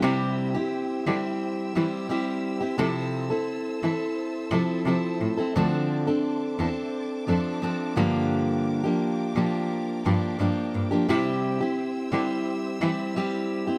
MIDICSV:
0, 0, Header, 1, 4, 480
1, 0, Start_track
1, 0, Tempo, 690449
1, 27, Time_signature, 4, 2, 24, 8
1, 9581, End_track
2, 0, Start_track
2, 0, Title_t, "String section"
2, 0, Program_c, 0, 48
2, 26, Note_on_c, 0, 76, 77
2, 27, Note_on_c, 0, 88, 88
2, 29, Note_on_c, 0, 79, 76
2, 30, Note_on_c, 0, 72, 84
2, 1927, Note_off_c, 0, 76, 0
2, 1928, Note_off_c, 0, 79, 0
2, 1946, Note_on_c, 0, 76, 73
2, 1947, Note_on_c, 0, 81, 74
2, 3839, Note_off_c, 0, 88, 0
2, 3848, Note_off_c, 0, 81, 0
2, 3875, Note_on_c, 0, 81, 73
2, 3875, Note_on_c, 0, 86, 85
2, 5522, Note_off_c, 0, 72, 0
2, 5536, Note_off_c, 0, 81, 0
2, 5547, Note_on_c, 0, 70, 83
2, 5548, Note_on_c, 0, 79, 75
2, 7682, Note_off_c, 0, 76, 0
2, 7686, Note_off_c, 0, 86, 0
2, 7688, Note_off_c, 0, 70, 0
2, 7713, Note_on_c, 0, 88, 91
2, 7716, Note_on_c, 0, 72, 81
2, 7717, Note_on_c, 0, 76, 76
2, 9581, Note_off_c, 0, 72, 0
2, 9581, Note_off_c, 0, 76, 0
2, 9581, Note_off_c, 0, 79, 0
2, 9581, Note_off_c, 0, 88, 0
2, 9581, End_track
3, 0, Start_track
3, 0, Title_t, "Steel-string acoustic guitar"
3, 0, Program_c, 1, 25
3, 15, Note_on_c, 1, 48, 88
3, 18, Note_on_c, 1, 55, 94
3, 26, Note_on_c, 1, 60, 86
3, 26, Note_on_c, 1, 64, 88
3, 28, Note_on_c, 1, 67, 106
3, 370, Note_off_c, 1, 67, 0
3, 379, Note_on_c, 1, 67, 67
3, 380, Note_off_c, 1, 64, 0
3, 381, Note_off_c, 1, 48, 0
3, 382, Note_off_c, 1, 55, 0
3, 386, Note_off_c, 1, 60, 0
3, 388, Note_on_c, 1, 64, 51
3, 394, Note_on_c, 1, 60, 48
3, 736, Note_off_c, 1, 60, 0
3, 739, Note_on_c, 1, 55, 67
3, 741, Note_off_c, 1, 64, 0
3, 743, Note_off_c, 1, 67, 0
3, 744, Note_on_c, 1, 60, 70
3, 749, Note_on_c, 1, 64, 65
3, 754, Note_on_c, 1, 67, 68
3, 1210, Note_off_c, 1, 55, 0
3, 1218, Note_off_c, 1, 60, 0
3, 1218, Note_on_c, 1, 55, 72
3, 1221, Note_off_c, 1, 67, 0
3, 1221, Note_on_c, 1, 60, 71
3, 1224, Note_off_c, 1, 64, 0
3, 1227, Note_on_c, 1, 64, 74
3, 1230, Note_on_c, 1, 67, 73
3, 1444, Note_off_c, 1, 55, 0
3, 1450, Note_off_c, 1, 60, 0
3, 1453, Note_on_c, 1, 55, 69
3, 1457, Note_off_c, 1, 64, 0
3, 1458, Note_on_c, 1, 60, 71
3, 1460, Note_off_c, 1, 67, 0
3, 1465, Note_on_c, 1, 64, 77
3, 1469, Note_on_c, 1, 67, 72
3, 1803, Note_off_c, 1, 67, 0
3, 1809, Note_off_c, 1, 64, 0
3, 1811, Note_on_c, 1, 67, 59
3, 1817, Note_on_c, 1, 64, 54
3, 1818, Note_off_c, 1, 60, 0
3, 1820, Note_off_c, 1, 55, 0
3, 1827, Note_on_c, 1, 60, 54
3, 1928, Note_off_c, 1, 60, 0
3, 1931, Note_on_c, 1, 48, 92
3, 1934, Note_off_c, 1, 64, 0
3, 1934, Note_on_c, 1, 53, 84
3, 1936, Note_on_c, 1, 60, 87
3, 1938, Note_off_c, 1, 67, 0
3, 1941, Note_on_c, 1, 69, 96
3, 1942, Note_on_c, 1, 64, 90
3, 2286, Note_off_c, 1, 69, 0
3, 2294, Note_on_c, 1, 69, 59
3, 2296, Note_off_c, 1, 64, 0
3, 2299, Note_off_c, 1, 48, 0
3, 2300, Note_off_c, 1, 53, 0
3, 2301, Note_off_c, 1, 60, 0
3, 2304, Note_on_c, 1, 64, 53
3, 2310, Note_on_c, 1, 60, 49
3, 2655, Note_off_c, 1, 60, 0
3, 2660, Note_off_c, 1, 69, 0
3, 2661, Note_off_c, 1, 64, 0
3, 2663, Note_on_c, 1, 60, 71
3, 2669, Note_on_c, 1, 64, 67
3, 2671, Note_on_c, 1, 69, 65
3, 3138, Note_on_c, 1, 53, 72
3, 3140, Note_off_c, 1, 64, 0
3, 3141, Note_off_c, 1, 60, 0
3, 3144, Note_on_c, 1, 60, 75
3, 3148, Note_on_c, 1, 64, 74
3, 3150, Note_off_c, 1, 69, 0
3, 3153, Note_on_c, 1, 69, 78
3, 3372, Note_off_c, 1, 53, 0
3, 3375, Note_off_c, 1, 60, 0
3, 3380, Note_off_c, 1, 64, 0
3, 3381, Note_on_c, 1, 53, 69
3, 3383, Note_on_c, 1, 60, 66
3, 3385, Note_off_c, 1, 69, 0
3, 3389, Note_on_c, 1, 64, 73
3, 3393, Note_on_c, 1, 69, 74
3, 3727, Note_off_c, 1, 69, 0
3, 3734, Note_off_c, 1, 64, 0
3, 3735, Note_on_c, 1, 69, 62
3, 3743, Note_on_c, 1, 64, 55
3, 3744, Note_off_c, 1, 53, 0
3, 3745, Note_off_c, 1, 60, 0
3, 3753, Note_on_c, 1, 60, 50
3, 3859, Note_off_c, 1, 60, 0
3, 3861, Note_off_c, 1, 69, 0
3, 3863, Note_on_c, 1, 50, 96
3, 3865, Note_off_c, 1, 64, 0
3, 3866, Note_on_c, 1, 53, 88
3, 3867, Note_on_c, 1, 60, 85
3, 3870, Note_on_c, 1, 62, 104
3, 3874, Note_on_c, 1, 69, 88
3, 4211, Note_off_c, 1, 69, 0
3, 4217, Note_off_c, 1, 62, 0
3, 4220, Note_on_c, 1, 69, 63
3, 4224, Note_off_c, 1, 60, 0
3, 4225, Note_off_c, 1, 50, 0
3, 4225, Note_on_c, 1, 62, 59
3, 4227, Note_off_c, 1, 53, 0
3, 4232, Note_on_c, 1, 60, 51
3, 4573, Note_off_c, 1, 60, 0
3, 4576, Note_off_c, 1, 62, 0
3, 4581, Note_off_c, 1, 69, 0
3, 4581, Note_on_c, 1, 60, 66
3, 4585, Note_on_c, 1, 62, 66
3, 4589, Note_on_c, 1, 69, 76
3, 5052, Note_off_c, 1, 60, 0
3, 5054, Note_on_c, 1, 53, 68
3, 5060, Note_on_c, 1, 60, 73
3, 5061, Note_off_c, 1, 62, 0
3, 5061, Note_off_c, 1, 69, 0
3, 5064, Note_on_c, 1, 62, 81
3, 5070, Note_on_c, 1, 69, 71
3, 5287, Note_off_c, 1, 53, 0
3, 5296, Note_off_c, 1, 60, 0
3, 5296, Note_on_c, 1, 53, 71
3, 5302, Note_off_c, 1, 62, 0
3, 5303, Note_off_c, 1, 69, 0
3, 5304, Note_on_c, 1, 60, 68
3, 5311, Note_on_c, 1, 62, 81
3, 5312, Note_on_c, 1, 69, 75
3, 5530, Note_off_c, 1, 53, 0
3, 5532, Note_on_c, 1, 43, 76
3, 5533, Note_off_c, 1, 62, 0
3, 5535, Note_on_c, 1, 50, 84
3, 5538, Note_off_c, 1, 60, 0
3, 5538, Note_off_c, 1, 69, 0
3, 5538, Note_on_c, 1, 53, 79
3, 5541, Note_on_c, 1, 58, 84
3, 5541, Note_on_c, 1, 62, 88
3, 5541, Note_on_c, 1, 67, 80
3, 6140, Note_off_c, 1, 67, 0
3, 6141, Note_off_c, 1, 43, 0
3, 6142, Note_off_c, 1, 50, 0
3, 6143, Note_on_c, 1, 67, 62
3, 6144, Note_off_c, 1, 53, 0
3, 6144, Note_off_c, 1, 62, 0
3, 6145, Note_off_c, 1, 58, 0
3, 6152, Note_on_c, 1, 62, 53
3, 6157, Note_on_c, 1, 58, 52
3, 6160, Note_on_c, 1, 53, 46
3, 6497, Note_off_c, 1, 53, 0
3, 6503, Note_off_c, 1, 58, 0
3, 6505, Note_on_c, 1, 53, 69
3, 6506, Note_off_c, 1, 62, 0
3, 6506, Note_off_c, 1, 67, 0
3, 6511, Note_on_c, 1, 58, 60
3, 6515, Note_on_c, 1, 62, 78
3, 6521, Note_on_c, 1, 67, 73
3, 6981, Note_off_c, 1, 53, 0
3, 6984, Note_off_c, 1, 58, 0
3, 6986, Note_off_c, 1, 62, 0
3, 6989, Note_on_c, 1, 53, 75
3, 6992, Note_on_c, 1, 58, 76
3, 6994, Note_on_c, 1, 62, 75
3, 6997, Note_off_c, 1, 67, 0
3, 6999, Note_on_c, 1, 67, 79
3, 7214, Note_off_c, 1, 53, 0
3, 7221, Note_off_c, 1, 58, 0
3, 7223, Note_on_c, 1, 53, 66
3, 7225, Note_off_c, 1, 62, 0
3, 7229, Note_off_c, 1, 67, 0
3, 7230, Note_on_c, 1, 58, 69
3, 7233, Note_on_c, 1, 62, 75
3, 7237, Note_on_c, 1, 67, 71
3, 7575, Note_off_c, 1, 67, 0
3, 7582, Note_off_c, 1, 62, 0
3, 7583, Note_on_c, 1, 67, 61
3, 7584, Note_off_c, 1, 58, 0
3, 7586, Note_off_c, 1, 53, 0
3, 7590, Note_on_c, 1, 62, 62
3, 7593, Note_on_c, 1, 58, 52
3, 7598, Note_on_c, 1, 53, 54
3, 7705, Note_on_c, 1, 48, 88
3, 7707, Note_off_c, 1, 67, 0
3, 7708, Note_off_c, 1, 53, 0
3, 7710, Note_off_c, 1, 62, 0
3, 7711, Note_off_c, 1, 58, 0
3, 7711, Note_on_c, 1, 55, 94
3, 7714, Note_on_c, 1, 64, 106
3, 7715, Note_on_c, 1, 60, 93
3, 7717, Note_on_c, 1, 67, 98
3, 8060, Note_off_c, 1, 67, 0
3, 8068, Note_off_c, 1, 48, 0
3, 8068, Note_on_c, 1, 67, 61
3, 8069, Note_off_c, 1, 64, 0
3, 8071, Note_off_c, 1, 55, 0
3, 8073, Note_off_c, 1, 60, 0
3, 8078, Note_on_c, 1, 64, 59
3, 8080, Note_on_c, 1, 60, 54
3, 8421, Note_off_c, 1, 60, 0
3, 8423, Note_on_c, 1, 55, 60
3, 8426, Note_off_c, 1, 64, 0
3, 8429, Note_off_c, 1, 67, 0
3, 8429, Note_on_c, 1, 60, 66
3, 8434, Note_on_c, 1, 64, 76
3, 8436, Note_on_c, 1, 67, 71
3, 8898, Note_off_c, 1, 55, 0
3, 8906, Note_on_c, 1, 55, 74
3, 8910, Note_off_c, 1, 60, 0
3, 8912, Note_on_c, 1, 60, 75
3, 8913, Note_off_c, 1, 64, 0
3, 8913, Note_off_c, 1, 67, 0
3, 8916, Note_on_c, 1, 64, 83
3, 8922, Note_on_c, 1, 67, 71
3, 9141, Note_off_c, 1, 55, 0
3, 9147, Note_off_c, 1, 60, 0
3, 9148, Note_off_c, 1, 64, 0
3, 9149, Note_on_c, 1, 55, 75
3, 9152, Note_off_c, 1, 67, 0
3, 9155, Note_on_c, 1, 60, 82
3, 9156, Note_on_c, 1, 64, 70
3, 9161, Note_on_c, 1, 67, 86
3, 9496, Note_off_c, 1, 67, 0
3, 9503, Note_off_c, 1, 64, 0
3, 9504, Note_on_c, 1, 67, 55
3, 9509, Note_off_c, 1, 55, 0
3, 9509, Note_off_c, 1, 60, 0
3, 9511, Note_on_c, 1, 64, 55
3, 9517, Note_on_c, 1, 60, 58
3, 9581, Note_off_c, 1, 60, 0
3, 9581, Note_off_c, 1, 64, 0
3, 9581, Note_off_c, 1, 67, 0
3, 9581, End_track
4, 0, Start_track
4, 0, Title_t, "Cello"
4, 0, Program_c, 2, 42
4, 19, Note_on_c, 2, 48, 113
4, 74, Note_off_c, 2, 48, 0
4, 742, Note_on_c, 2, 50, 93
4, 798, Note_off_c, 2, 50, 0
4, 1226, Note_on_c, 2, 52, 88
4, 1282, Note_off_c, 2, 52, 0
4, 1941, Note_on_c, 2, 48, 114
4, 1997, Note_off_c, 2, 48, 0
4, 2663, Note_on_c, 2, 52, 85
4, 2719, Note_off_c, 2, 52, 0
4, 3136, Note_on_c, 2, 48, 101
4, 3192, Note_off_c, 2, 48, 0
4, 3375, Note_on_c, 2, 48, 91
4, 3431, Note_off_c, 2, 48, 0
4, 3620, Note_on_c, 2, 45, 84
4, 3676, Note_off_c, 2, 45, 0
4, 3865, Note_on_c, 2, 38, 96
4, 3921, Note_off_c, 2, 38, 0
4, 4585, Note_on_c, 2, 40, 89
4, 4640, Note_off_c, 2, 40, 0
4, 5066, Note_on_c, 2, 41, 89
4, 5121, Note_off_c, 2, 41, 0
4, 5545, Note_on_c, 2, 43, 97
4, 5600, Note_off_c, 2, 43, 0
4, 6505, Note_on_c, 2, 46, 87
4, 6561, Note_off_c, 2, 46, 0
4, 6990, Note_on_c, 2, 43, 101
4, 7045, Note_off_c, 2, 43, 0
4, 7226, Note_on_c, 2, 43, 87
4, 7281, Note_off_c, 2, 43, 0
4, 7473, Note_on_c, 2, 43, 84
4, 7529, Note_off_c, 2, 43, 0
4, 7712, Note_on_c, 2, 48, 105
4, 7767, Note_off_c, 2, 48, 0
4, 8426, Note_on_c, 2, 50, 87
4, 8482, Note_off_c, 2, 50, 0
4, 8908, Note_on_c, 2, 52, 98
4, 8964, Note_off_c, 2, 52, 0
4, 9581, End_track
0, 0, End_of_file